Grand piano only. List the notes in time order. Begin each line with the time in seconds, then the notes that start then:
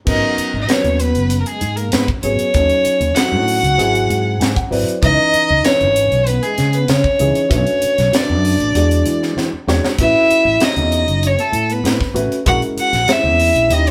0.05 F#3 B3 C#4 A#4
0.67 F#3 B3 C#4 B4
2.23 F#3 B3 C#4 G#4
2.54 F#3 C#4 D#4 A4
3.16 F#3 C#4 D#4 A4
3.77 F#3 C4 E4 G#4
4.40 G#5
4.57 F#5
4.70 F#3 C4 E4 B4 D5
5.02 E3 C#4 D#4 B4
5.63 E3 C#4 D#4 B4
7.19 E3 C#4 D#4 G#4
7.49 D3 A3 F#4 B4
8.12 A3 D4 F#4 B4
8.75 G#3 D4 F#4 D5
9.67 G#3 D4 F#4 C#5
9.99 A3 C#4 F#4 B4
10.60 A3 C#4 F#4 C#5
12.14 A3 C#4 F#4 B4
12.45 G#3 C#4 E4 A#4
13.07 G#3 C#4 E4 C5
13.69 C#4 D#4 E4 G4